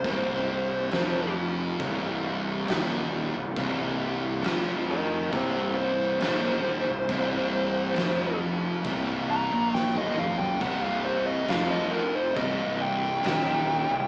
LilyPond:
<<
  \new Staff \with { instrumentName = "Lead electric guitar" } { \time 4/4 \key c \minor \tempo 4 = 68 c''4. r2 r8 | r4. <bes' ees''>8 <g' c''>8 c''4.~ | c''4. r4 bes''8 g''16 ees''16 f''16 g''16 | fis''16 f''16 c''16 ees''16 f''16 ees''16 bes'16 c''16 ees''8 g''4. | }
  \new Staff \with { instrumentName = "Distorted electric guitar" } { \clef bass \time 4/4 \key c \minor <c, c>4 <f, f>4 <c, c>4 <ees, ees>8. c,16 | <c, c>4 <f, f>4 <c, c>4 <ees, ees>8. c,16 | <c, c>4 <f, f>4 <c, c>8. <bes, bes>8 <ees, ees>16 <f, f>16 <fis, fis>16 | <c, c>4 <f, f>4 <c, c>4 <ees, ees>8. c,16 | }
  \new Staff \with { instrumentName = "Distorted electric guitar" } { \clef bass \time 4/4 \key c \minor <c, c>4 <f, f>4 <c, c>4 <ees, ees>8. c,16 | <c, c>4 <f, f>4 <c, c>4 <ees, ees>8. c,16 | <c, c>4 <f, f>4 <c, c>8. <bes, bes>8 <ees, ees>16 <f, f>16 <fis, fis>16 | <c, c>4 <f, f>4 <c, c>4 <ees, ees>8. c,16 | }
  \new Staff \with { instrumentName = "Fingered electric bass" } { \clef bass \time 4/4 \key c \minor c,,4 f,,4 c,,4 ees,,8. c,,16 | c,,4 f,,4 c,,4 ees,,8. c,,16 | c,,4 f,,4 c,,8. bes,,8 ees,,16 f,,16 fis,,16 | c,,4 f,,4 c,,4 ees,,8. c,,16 | }
  \new DrumStaff \with { instrumentName = "Drums" } \drummode { \time 4/4 <cymc bd>4 <cymc sn>4 <cymc bd>4 <cymc sn>4 | <cymc bd>4 <cymc sn>4 <cymc bd>4 <cymc sn>4 | <cymc bd>4 <cymc sn>4 <cymc bd>4 sn16 tommh16 toml16 tomfh16 | <cymc bd>4 <cymc sn>4 <cymc bd>4 <cymc sn>4 | }
>>